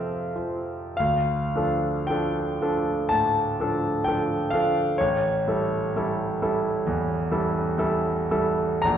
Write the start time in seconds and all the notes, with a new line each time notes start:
Already playing: F2 C3 F3 C4 A4 E5 F5 G5
0.36 F3
0.97 D2 F5
1.56 F3 D4 A4
2.07 F3 D4 A4 G5
2.62 F3 D4 A4
3.09 A2 A5
3.60 F3 D4 A4
4.04 F3 D4 A4 G5
4.50 F3 D4 F5
4.55 A4
4.98 A1 C#5
5.48 G3 E4 A4
5.96 G3 E4 A4
6.42 G3 E4 A4
6.87 E2
7.32 G3 E4 A4
7.78 G3 E4 A4
8.31 G3 E4 A4
8.82 A#1 A#5